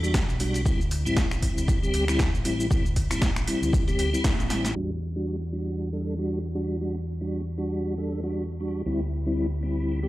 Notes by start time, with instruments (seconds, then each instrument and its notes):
Already playing: fingered electric bass E2
0.03 tonewheel organ G3 D4 F#4, shaker
0.14 kick, snare, open hi-hat, shaker
0.29 fingered electric bass B1, snare, shaker
0.40 tonewheel organ G3 D4 F#4, open hi-hat, shaker
0.54 closed hi-hat, shaker
0.65 fingered electric bass D2, tonewheel organ G3 C4 E4, kick, shaker
0.81 shaker
0.91 open hi-hat, shaker
1.05 fingered electric bass A1, tonewheel organ G3 C4 E4, shaker
1.17 kick, snare, open hi-hat, shaker
1.31 finger snap, snare, shaker
1.42 tonewheel organ G3 C4 E4, kick, open hi-hat, shaker
1.57 fingered electric bass D2, shaker
1.68 kick, shaker
1.82 tonewheel organ G3 C4 G4, shaker
1.94 fingered electric bass D2, open hi-hat, shaker
2.08 tonewheel organ G3 C4 E4, finger snap, shaker
2.19 kick, snare, shaker
2.34 fingered electric bass A1, shaker
2.45 tonewheel organ G3 C4 E4, open hi-hat, shaker
2.60 shaker
2.70 fingered electric bass D2, tonewheel organ G3 C4 E4, kick, shaker
2.86 shaker
2.96 kick, open hi-hat, shaker
3.10 fingered electric bass A1, tonewheel organ G3 C4 E4, finger snap, open hi-hat, shaker
3.22 kick, snare, shaker
3.36 finger snap, closed hi-hat, shaker
3.47 tonewheel organ G3 C4 E4, open hi-hat, shaker
3.62 fingered electric bass D2, shaker
3.73 kick, shaker
3.87 tonewheel organ G3 C4 G4, closed hi-hat, shaker
3.99 fingered electric bass D2, open hi-hat, shaker
4.13 tonewheel organ G3 C4 E4, shaker
4.24 kick, snare, open hi-hat, shaker
4.39 fingered electric bass A1, snare, shaker
4.50 tonewheel organ G3 C4 E4, snare, open hi-hat, shaker
4.65 snare, closed hi-hat, shaker
4.76 fingered electric bass E2, tonewheel organ G3 D4 F#4, crash
5.16 tonewheel organ G3 D4 F#4
5.52 tonewheel organ G3 D4 F#4
5.93 tonewheel organ G3 D4 A4
6.18 tonewheel organ G3 D4 F#4
6.55 tonewheel organ G3 D4 F#4
6.81 tonewheel organ G3 D4 F#4
7.21 tonewheel organ G3 D4 F#4
7.58 tonewheel organ G3 D4 F#4
7.98 tonewheel organ G3 D4 A4
8.23 tonewheel organ G3 D4 F#4
8.60 tonewheel organ G3 D4 F#4
8.86 fingered electric bass D2, tonewheel organ G3 C4 E4
9.26 tonewheel organ G3 C4 E4
9.63 tonewheel organ G3 C4 E4
10.03 tonewheel organ G3 C4 G4